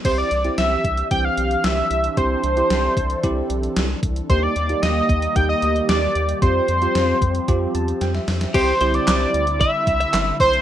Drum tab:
CC |x---------------|----------------|----------------|----------------|
HH |x-xxx-xxx-xxx-xx|x-xxx-xxx-xxx-xx|x-xxx-xxx-xxx-xx|x-xxx-xxx-xxx-ox|
CP |----------------|----------------|----------------|----------------|
SD |----o-------o---|----o-------o---|----o-------o---|----o-------oooo|
BD |o-----o-o-------|o-----o-o-----o-|o-----o-o-------|o-----o-o-------|

CC |x---------------|
HH |x-xxx-xxx-xxx-ox|
CP |----x-------x---|
SD |----o-------o---|
BD |o-------o-o---o-|